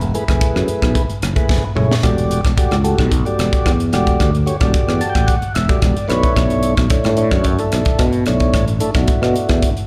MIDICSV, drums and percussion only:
0, 0, Header, 1, 2, 480
1, 0, Start_track
1, 0, Key_signature, 2, "minor"
1, 0, Tempo, 542495
1, 1803, Time_signature, 4, 2, 24, 8
1, 8732, End_track
2, 0, Start_track
2, 0, Title_t, "Drums"
2, 10, Note_on_c, 9, 42, 34
2, 99, Note_off_c, 9, 42, 0
2, 130, Note_on_c, 9, 42, 51
2, 218, Note_off_c, 9, 42, 0
2, 251, Note_on_c, 9, 36, 73
2, 254, Note_on_c, 9, 42, 34
2, 262, Note_on_c, 9, 37, 78
2, 340, Note_off_c, 9, 36, 0
2, 343, Note_off_c, 9, 42, 0
2, 351, Note_off_c, 9, 37, 0
2, 364, Note_on_c, 9, 42, 80
2, 365, Note_on_c, 9, 36, 119
2, 452, Note_off_c, 9, 42, 0
2, 453, Note_off_c, 9, 36, 0
2, 496, Note_on_c, 9, 37, 68
2, 585, Note_off_c, 9, 37, 0
2, 602, Note_on_c, 9, 42, 49
2, 690, Note_off_c, 9, 42, 0
2, 728, Note_on_c, 9, 36, 75
2, 730, Note_on_c, 9, 42, 31
2, 737, Note_on_c, 9, 37, 79
2, 817, Note_off_c, 9, 36, 0
2, 818, Note_off_c, 9, 42, 0
2, 826, Note_off_c, 9, 37, 0
2, 842, Note_on_c, 9, 42, 72
2, 843, Note_on_c, 9, 36, 78
2, 930, Note_off_c, 9, 42, 0
2, 931, Note_off_c, 9, 36, 0
2, 969, Note_on_c, 9, 42, 35
2, 1058, Note_off_c, 9, 42, 0
2, 1083, Note_on_c, 9, 42, 58
2, 1091, Note_on_c, 9, 37, 76
2, 1171, Note_off_c, 9, 42, 0
2, 1179, Note_off_c, 9, 37, 0
2, 1205, Note_on_c, 9, 36, 84
2, 1205, Note_on_c, 9, 42, 41
2, 1294, Note_off_c, 9, 36, 0
2, 1294, Note_off_c, 9, 42, 0
2, 1321, Note_on_c, 9, 36, 95
2, 1328, Note_on_c, 9, 38, 47
2, 1409, Note_off_c, 9, 36, 0
2, 1417, Note_off_c, 9, 38, 0
2, 1562, Note_on_c, 9, 45, 71
2, 1651, Note_off_c, 9, 45, 0
2, 1694, Note_on_c, 9, 38, 70
2, 1783, Note_off_c, 9, 38, 0
2, 1798, Note_on_c, 9, 42, 81
2, 1800, Note_on_c, 9, 36, 75
2, 1806, Note_on_c, 9, 37, 76
2, 1887, Note_off_c, 9, 42, 0
2, 1889, Note_off_c, 9, 36, 0
2, 1895, Note_off_c, 9, 37, 0
2, 1929, Note_on_c, 9, 42, 37
2, 2018, Note_off_c, 9, 42, 0
2, 2043, Note_on_c, 9, 42, 61
2, 2131, Note_off_c, 9, 42, 0
2, 2164, Note_on_c, 9, 36, 85
2, 2167, Note_on_c, 9, 42, 37
2, 2175, Note_on_c, 9, 37, 78
2, 2253, Note_off_c, 9, 36, 0
2, 2256, Note_off_c, 9, 42, 0
2, 2264, Note_off_c, 9, 37, 0
2, 2279, Note_on_c, 9, 36, 106
2, 2281, Note_on_c, 9, 42, 84
2, 2368, Note_off_c, 9, 36, 0
2, 2369, Note_off_c, 9, 42, 0
2, 2399, Note_on_c, 9, 42, 32
2, 2407, Note_on_c, 9, 37, 66
2, 2488, Note_off_c, 9, 42, 0
2, 2495, Note_off_c, 9, 37, 0
2, 2518, Note_on_c, 9, 42, 56
2, 2606, Note_off_c, 9, 42, 0
2, 2641, Note_on_c, 9, 36, 81
2, 2648, Note_on_c, 9, 37, 75
2, 2730, Note_off_c, 9, 36, 0
2, 2736, Note_off_c, 9, 37, 0
2, 2757, Note_on_c, 9, 36, 75
2, 2757, Note_on_c, 9, 42, 78
2, 2845, Note_off_c, 9, 36, 0
2, 2845, Note_off_c, 9, 42, 0
2, 2886, Note_on_c, 9, 42, 31
2, 2975, Note_off_c, 9, 42, 0
2, 3000, Note_on_c, 9, 42, 58
2, 3008, Note_on_c, 9, 37, 73
2, 3089, Note_off_c, 9, 42, 0
2, 3097, Note_off_c, 9, 37, 0
2, 3122, Note_on_c, 9, 36, 82
2, 3123, Note_on_c, 9, 42, 41
2, 3210, Note_off_c, 9, 36, 0
2, 3212, Note_off_c, 9, 42, 0
2, 3237, Note_on_c, 9, 36, 91
2, 3237, Note_on_c, 9, 42, 68
2, 3245, Note_on_c, 9, 37, 84
2, 3325, Note_off_c, 9, 36, 0
2, 3326, Note_off_c, 9, 42, 0
2, 3334, Note_off_c, 9, 37, 0
2, 3363, Note_on_c, 9, 42, 35
2, 3451, Note_off_c, 9, 42, 0
2, 3477, Note_on_c, 9, 42, 51
2, 3485, Note_on_c, 9, 37, 64
2, 3565, Note_off_c, 9, 42, 0
2, 3573, Note_off_c, 9, 37, 0
2, 3600, Note_on_c, 9, 42, 35
2, 3601, Note_on_c, 9, 36, 66
2, 3688, Note_off_c, 9, 42, 0
2, 3690, Note_off_c, 9, 36, 0
2, 3717, Note_on_c, 9, 36, 74
2, 3717, Note_on_c, 9, 42, 69
2, 3725, Note_on_c, 9, 37, 75
2, 3805, Note_off_c, 9, 42, 0
2, 3806, Note_off_c, 9, 36, 0
2, 3813, Note_off_c, 9, 37, 0
2, 3846, Note_on_c, 9, 42, 33
2, 3935, Note_off_c, 9, 42, 0
2, 3958, Note_on_c, 9, 42, 53
2, 4046, Note_off_c, 9, 42, 0
2, 4074, Note_on_c, 9, 42, 34
2, 4078, Note_on_c, 9, 36, 80
2, 4082, Note_on_c, 9, 37, 77
2, 4163, Note_off_c, 9, 42, 0
2, 4167, Note_off_c, 9, 36, 0
2, 4171, Note_off_c, 9, 37, 0
2, 4194, Note_on_c, 9, 36, 103
2, 4194, Note_on_c, 9, 42, 74
2, 4282, Note_off_c, 9, 42, 0
2, 4283, Note_off_c, 9, 36, 0
2, 4323, Note_on_c, 9, 37, 68
2, 4412, Note_off_c, 9, 37, 0
2, 4432, Note_on_c, 9, 42, 51
2, 4520, Note_off_c, 9, 42, 0
2, 4557, Note_on_c, 9, 42, 35
2, 4558, Note_on_c, 9, 36, 75
2, 4565, Note_on_c, 9, 37, 78
2, 4646, Note_off_c, 9, 36, 0
2, 4646, Note_off_c, 9, 42, 0
2, 4654, Note_off_c, 9, 37, 0
2, 4670, Note_on_c, 9, 42, 72
2, 4673, Note_on_c, 9, 36, 78
2, 4758, Note_off_c, 9, 42, 0
2, 4761, Note_off_c, 9, 36, 0
2, 4796, Note_on_c, 9, 42, 31
2, 4884, Note_off_c, 9, 42, 0
2, 4912, Note_on_c, 9, 42, 57
2, 4920, Note_on_c, 9, 37, 90
2, 5001, Note_off_c, 9, 42, 0
2, 5009, Note_off_c, 9, 37, 0
2, 5036, Note_on_c, 9, 42, 38
2, 5037, Note_on_c, 9, 36, 82
2, 5125, Note_off_c, 9, 42, 0
2, 5126, Note_off_c, 9, 36, 0
2, 5149, Note_on_c, 9, 42, 76
2, 5152, Note_on_c, 9, 36, 104
2, 5157, Note_on_c, 9, 37, 82
2, 5238, Note_off_c, 9, 42, 0
2, 5241, Note_off_c, 9, 36, 0
2, 5246, Note_off_c, 9, 37, 0
2, 5278, Note_on_c, 9, 42, 37
2, 5366, Note_off_c, 9, 42, 0
2, 5393, Note_on_c, 9, 42, 50
2, 5401, Note_on_c, 9, 37, 68
2, 5481, Note_off_c, 9, 42, 0
2, 5489, Note_off_c, 9, 37, 0
2, 5516, Note_on_c, 9, 36, 72
2, 5517, Note_on_c, 9, 42, 35
2, 5605, Note_off_c, 9, 36, 0
2, 5606, Note_off_c, 9, 42, 0
2, 5631, Note_on_c, 9, 36, 68
2, 5631, Note_on_c, 9, 42, 72
2, 5639, Note_on_c, 9, 37, 81
2, 5720, Note_off_c, 9, 36, 0
2, 5720, Note_off_c, 9, 42, 0
2, 5728, Note_off_c, 9, 37, 0
2, 5752, Note_on_c, 9, 42, 39
2, 5840, Note_off_c, 9, 42, 0
2, 5863, Note_on_c, 9, 42, 61
2, 5952, Note_off_c, 9, 42, 0
2, 5991, Note_on_c, 9, 42, 39
2, 5994, Note_on_c, 9, 36, 72
2, 5999, Note_on_c, 9, 37, 82
2, 6079, Note_off_c, 9, 42, 0
2, 6082, Note_off_c, 9, 36, 0
2, 6087, Note_off_c, 9, 37, 0
2, 6103, Note_on_c, 9, 42, 86
2, 6109, Note_on_c, 9, 36, 120
2, 6192, Note_off_c, 9, 42, 0
2, 6197, Note_off_c, 9, 36, 0
2, 6229, Note_on_c, 9, 42, 33
2, 6237, Note_on_c, 9, 37, 76
2, 6318, Note_off_c, 9, 42, 0
2, 6326, Note_off_c, 9, 37, 0
2, 6342, Note_on_c, 9, 42, 57
2, 6430, Note_off_c, 9, 42, 0
2, 6471, Note_on_c, 9, 36, 82
2, 6473, Note_on_c, 9, 37, 76
2, 6560, Note_off_c, 9, 36, 0
2, 6561, Note_off_c, 9, 37, 0
2, 6583, Note_on_c, 9, 42, 72
2, 6589, Note_on_c, 9, 36, 70
2, 6671, Note_off_c, 9, 42, 0
2, 6677, Note_off_c, 9, 36, 0
2, 6712, Note_on_c, 9, 42, 39
2, 6800, Note_off_c, 9, 42, 0
2, 6829, Note_on_c, 9, 42, 60
2, 6837, Note_on_c, 9, 37, 72
2, 6917, Note_off_c, 9, 42, 0
2, 6925, Note_off_c, 9, 37, 0
2, 6946, Note_on_c, 9, 42, 40
2, 6954, Note_on_c, 9, 36, 84
2, 7035, Note_off_c, 9, 42, 0
2, 7042, Note_off_c, 9, 36, 0
2, 7068, Note_on_c, 9, 42, 75
2, 7071, Note_on_c, 9, 36, 101
2, 7076, Note_on_c, 9, 37, 78
2, 7156, Note_off_c, 9, 42, 0
2, 7160, Note_off_c, 9, 36, 0
2, 7164, Note_off_c, 9, 37, 0
2, 7189, Note_on_c, 9, 42, 33
2, 7277, Note_off_c, 9, 42, 0
2, 7306, Note_on_c, 9, 42, 57
2, 7314, Note_on_c, 9, 37, 74
2, 7394, Note_off_c, 9, 42, 0
2, 7402, Note_off_c, 9, 37, 0
2, 7430, Note_on_c, 9, 42, 30
2, 7436, Note_on_c, 9, 36, 70
2, 7519, Note_off_c, 9, 42, 0
2, 7524, Note_off_c, 9, 36, 0
2, 7552, Note_on_c, 9, 42, 75
2, 7553, Note_on_c, 9, 36, 72
2, 7560, Note_on_c, 9, 37, 81
2, 7640, Note_off_c, 9, 42, 0
2, 7642, Note_off_c, 9, 36, 0
2, 7648, Note_off_c, 9, 37, 0
2, 7677, Note_on_c, 9, 42, 37
2, 7765, Note_off_c, 9, 42, 0
2, 7790, Note_on_c, 9, 42, 60
2, 7878, Note_off_c, 9, 42, 0
2, 7912, Note_on_c, 9, 42, 34
2, 7916, Note_on_c, 9, 36, 84
2, 7920, Note_on_c, 9, 37, 81
2, 8001, Note_off_c, 9, 42, 0
2, 8005, Note_off_c, 9, 36, 0
2, 8009, Note_off_c, 9, 37, 0
2, 8030, Note_on_c, 9, 42, 79
2, 8034, Note_on_c, 9, 36, 104
2, 8119, Note_off_c, 9, 42, 0
2, 8123, Note_off_c, 9, 36, 0
2, 8165, Note_on_c, 9, 37, 70
2, 8254, Note_off_c, 9, 37, 0
2, 8278, Note_on_c, 9, 42, 50
2, 8366, Note_off_c, 9, 42, 0
2, 8395, Note_on_c, 9, 42, 31
2, 8401, Note_on_c, 9, 36, 72
2, 8403, Note_on_c, 9, 37, 80
2, 8483, Note_off_c, 9, 42, 0
2, 8489, Note_off_c, 9, 36, 0
2, 8491, Note_off_c, 9, 37, 0
2, 8515, Note_on_c, 9, 42, 78
2, 8517, Note_on_c, 9, 36, 72
2, 8604, Note_off_c, 9, 42, 0
2, 8605, Note_off_c, 9, 36, 0
2, 8642, Note_on_c, 9, 42, 34
2, 8730, Note_off_c, 9, 42, 0
2, 8732, End_track
0, 0, End_of_file